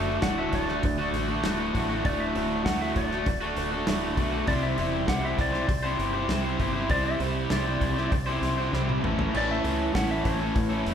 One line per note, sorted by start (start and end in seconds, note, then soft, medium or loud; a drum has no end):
0.00 0.19 F#1 medium
0.00 0.22 D2 loud
0.00 0.22 A2 medium
0.00 0.23 D3 medium
0.00 0.24 A3 medium
0.00 0.25 F#4 medium
0.00 0.22 E5 loud
0.22 0.49 D1 medium
0.22 1.42 D2 medium
0.22 0.69 A2 loud
0.22 0.40 D3 medium
0.22 0.39 A3 loud
0.22 0.37 F#4 medium
0.22 0.38 F#5 medium
0.22 kick medium
0.22 snare loud
0.22 open hi-hat medium
0.38 0.69 D3 medium
0.38 0.68 A3 medium
0.38 0.66 F#4 medium
0.38 0.54 E5 medium
0.52 0.80 D1 medium
0.52 1.11 D5 medium
0.52 kick medium
0.52 snare soft
0.52 open hi-hat medium
0.67 0.82 D3 medium
0.67 0.82 A3 medium
0.67 0.83 F#4 medium
0.67 snare soft
0.83 1.10 D1 loud
0.83 muted overdriven electric guitar stroke soft
0.83 kick loud
0.83 open hi-hat medium
0.98 1.30 D3 medium
0.98 1.28 A3 medium
0.98 1.27 F#4 medium
1.13 1.40 A1 loud
1.13 snare soft
1.13 open hi-hat medium
1.28 1.43 D3 medium
1.28 1.44 A3 medium
1.28 1.44 F#4 medium
1.43 1.70 D1 medium
1.43 1.89 D2 medium
1.43 1.72 A2 medium
1.43 1.59 D3 loud
1.43 1.58 A3 medium
1.43 1.56 F#4 loud
1.43 snare loud
1.43 open hi-hat medium
1.57 1.73 D3 medium
1.57 1.73 A3 medium
1.57 1.74 F#4 medium
1.73 2.01 A1 medium
1.73 2.03 A2 medium
1.73 1.90 D3 medium
1.73 1.89 A3 medium
1.73 1.87 F#4 medium
1.73 kick medium
1.73 open hi-hat medium
1.89 2.04 D3 medium
1.89 2.04 A3 medium
1.89 2.05 F#4 medium
2.03 2.32 D1 medium
2.03 2.63 D2 loud
2.03 2.34 A2 loud
2.03 2.35 D3 loud
2.03 2.35 A3 loud
2.03 2.36 F#4 loud
2.03 2.21 D5 medium
2.03 kick loud
2.03 open hi-hat medium
2.20 2.65 E5 medium
2.35 2.62 D1 medium
2.35 2.64 A2 medium
2.35 2.65 D3 medium
2.35 2.65 A3 medium
2.35 2.66 F#4 medium
2.35 open hi-hat medium
2.64 3.11 D2 medium
2.64 2.92 D2 medium
2.64 3.11 A2 medium
2.64 2.81 D3 loud
2.64 2.80 A3 loud
2.64 2.78 F#4 loud
2.64 2.81 F#5 loud
2.64 kick medium
2.64 snare loud
2.64 open hi-hat medium
2.79 3.11 D3 medium
2.79 3.11 A3 medium
2.79 3.09 F#4 medium
2.79 2.97 E5 medium
2.96 3.23 D1 medium
2.96 3.53 D5 medium
2.96 kick medium
2.96 open hi-hat medium
3.10 3.25 D3 medium
3.10 3.26 A3 medium
3.10 3.26 F#4 medium
3.10 snare soft
3.26 3.53 D1 loud
3.26 muted overdriven electric guitar stroke soft
3.26 kick loud
3.26 open hi-hat medium
3.41 3.74 D3 medium
3.41 3.72 A3 medium
3.41 3.71 F#4 medium
3.57 3.84 D1 loud
3.57 open hi-hat medium
3.72 3.87 D3 medium
3.72 3.87 A3 medium
3.72 3.88 F#4 medium
3.87 4.14 D1 medium
3.87 4.32 D2 loud
3.87 4.15 A2 loud
3.87 4.04 D3 loud
3.87 4.03 A3 loud
3.87 4.01 F#4 loud
3.87 snare loud
3.87 open hi-hat medium
4.02 4.16 D3 medium
4.02 4.17 A3 medium
4.02 4.18 F#4 medium
4.16 4.44 B1 medium
4.16 4.45 A2 medium
4.16 4.33 D3 medium
4.16 4.32 A3 medium
4.16 4.30 F#4 medium
4.16 kick medium
4.16 open hi-hat medium
4.31 4.47 D3 medium
4.31 4.46 A3 medium
4.31 4.45 F#4 medium
4.46 4.74 C2 medium
4.46 5.06 C3 loud
4.46 5.07 G3 loud
4.46 4.76 C4 loud
4.46 4.77 E4 loud
4.46 4.78 G4 loud
4.46 4.79 C5 loud
4.46 4.64 D5 medium
4.46 kick loud
4.46 open hi-hat medium
4.63 5.08 E5 medium
4.77 5.05 E1 medium
4.77 5.07 C4 medium
4.77 5.08 E4 medium
4.77 5.08 G4 medium
4.77 5.09 C5 medium
4.77 open hi-hat medium
5.06 5.35 C2 loud
5.06 5.53 C3 medium
5.06 5.53 G3 medium
5.06 5.23 C4 medium
5.06 5.22 E4 loud
5.06 5.21 G4 medium
5.06 5.20 C5 medium
5.06 5.24 F#5 medium
5.06 kick medium
5.06 snare loud
5.06 open hi-hat medium
5.21 5.53 C4 medium
5.21 5.53 E4 medium
5.21 5.51 G4 medium
5.21 5.51 C5 medium
5.21 5.40 E5 medium
5.38 5.65 C2 medium
5.38 5.97 D5 medium
5.38 kick medium
5.38 snare soft
5.38 open hi-hat medium
5.52 5.66 C4 medium
5.52 5.67 E4 medium
5.52 5.67 G4 medium
5.52 5.67 C5 medium
5.52 snare soft
5.67 5.96 C2 loud
5.67 muted overdriven electric guitar stroke soft
5.67 kick loud
5.67 open hi-hat medium
5.83 6.14 C4 medium
5.83 6.14 E4 medium
5.83 6.13 G4 medium
5.83 6.12 C5 medium
5.99 6.26 G1 medium
5.99 open hi-hat medium
6.13 6.28 C4 medium
6.13 6.29 E4 medium
6.13 6.29 G4 medium
6.13 6.30 C5 medium
6.28 6.56 C2 medium
6.28 6.75 C3 loud
6.28 6.75 G3 loud
6.28 6.45 C4 loud
6.28 6.45 E4 loud
6.28 6.44 G4 loud
6.28 6.43 C5 loud
6.28 snare loud
6.28 open hi-hat medium
6.44 6.57 C4 medium
6.44 6.59 E4 medium
6.44 6.59 G4 medium
6.44 6.60 C5 medium
6.58 6.86 G1 medium
6.58 6.75 C4 medium
6.58 6.75 E4 medium
6.58 6.73 G4 medium
6.58 6.72 C5 medium
6.58 kick medium
6.58 open hi-hat medium
6.73 6.89 C4 medium
6.73 6.90 E4 medium
6.73 6.90 G4 medium
6.73 6.91 C5 medium
6.89 7.17 C2 medium
6.89 7.49 C3 loud
6.89 7.50 G3 loud
6.89 7.19 C4 loud
6.89 7.20 E4 loud
6.89 7.21 G4 loud
6.89 7.22 C5 loud
6.89 7.05 D5 loud
6.89 kick loud
6.89 open hi-hat medium
7.06 7.22 E5 loud
7.20 7.47 C2 medium
7.20 7.51 C4 medium
7.20 7.52 E4 medium
7.20 7.51 G4 medium
7.20 7.53 C5 medium
7.20 7.52 C5 medium
7.20 open hi-hat medium
7.50 7.78 C2 loud
7.50 7.97 C3 medium
7.50 7.97 G3 loud
7.50 7.67 C4 loud
7.50 7.67 E4 medium
7.50 7.65 G4 loud
7.50 7.65 C5 loud
7.50 8.69 D5 medium
7.50 snare loud
7.50 open hi-hat medium
7.66 7.98 C4 medium
7.66 7.97 E4 medium
7.66 7.96 G4 medium
7.66 7.95 C5 medium
7.81 8.08 C2 medium
7.81 kick medium
7.81 open hi-hat medium
7.96 8.10 C4 medium
7.96 8.11 E4 medium
7.96 8.11 G4 medium
7.96 8.11 C5 medium
7.96 snare soft
8.12 8.39 C2 loud
8.12 muted overdriven electric guitar stroke soft
8.12 kick loud
8.12 open hi-hat medium
8.26 8.58 C4 medium
8.26 8.58 E4 medium
8.26 8.57 G4 medium
8.26 8.56 C5 medium
8.42 8.69 C2 loud
8.42 snare soft
8.42 open hi-hat medium
8.57 8.71 C4 medium
8.57 8.73 E4 medium
8.57 8.73 G4 medium
8.57 8.73 C5 medium
8.71 9.00 C2 medium
8.71 9.01 C3 medium
8.71 9.01 G3 medium
8.71 8.89 C4 medium
8.71 8.88 E4 loud
8.71 8.87 G4 loud
8.71 8.86 C5 loud
8.71 snare medium
8.87 9.02 C4 medium
8.87 9.03 E4 medium
8.87 9.01 G4 medium
8.87 9.01 C5 medium
8.87 high tom medium
9.02 9.31 A1 medium
9.02 9.32 A2 medium
9.02 9.33 E3 medium
9.02 9.20 A3 medium
9.02 9.19 C#4 loud
9.02 9.18 E4 loud
9.02 9.17 A4 medium
9.02 mid tom medium
9.18 9.33 A3 medium
9.18 9.34 C#4 medium
9.18 9.34 E4 medium
9.18 9.35 A4 medium
9.18 floor tom loud
9.33 9.61 A1 medium
9.33 9.93 A2 medium
9.33 9.93 E3 loud
9.33 9.62 A3 loud
9.33 9.64 C#4 loud
9.33 9.65 E4 loud
9.33 9.65 A4 loud
9.33 crash loud
9.37 9.51 D5 medium
9.51 9.95 E5 medium
9.63 9.91 C#2 medium
9.63 9.94 A3 medium
9.63 9.95 C#4 medium
9.63 9.95 E4 medium
9.63 9.95 A4 medium
9.63 open hi-hat medium
9.93 10.21 A1 medium
9.93 10.94 A2 medium
9.93 10.94 E3 medium
9.93 10.11 A3 medium
9.93 10.11 C#4 loud
9.93 10.09 E4 loud
9.93 10.08 A4 loud
9.93 10.09 F#5 medium
9.93 kick medium
9.93 snare loud
9.93 open hi-hat medium
10.09 10.40 A3 medium
10.09 10.40 C#4 medium
10.09 10.39 E4 medium
10.09 10.38 A4 medium
10.09 10.25 E5 medium
10.25 10.52 A1 loud
10.25 10.82 C#5 medium
10.25 kick medium
10.25 snare soft
10.25 open hi-hat medium
10.39 10.54 A3 medium
10.39 10.54 C#4 medium
10.39 10.54 E4 medium
10.39 10.55 A4 medium
10.55 10.82 A1 loud
10.55 muted overdriven electric guitar stroke soft
10.55 kick loud
10.55 open hi-hat medium
10.69 10.94 A3 medium
10.69 10.94 C#4 medium
10.69 10.94 E4 medium
10.69 10.94 A4 medium
10.85 10.94 E1 loud
10.85 snare soft
10.85 open hi-hat medium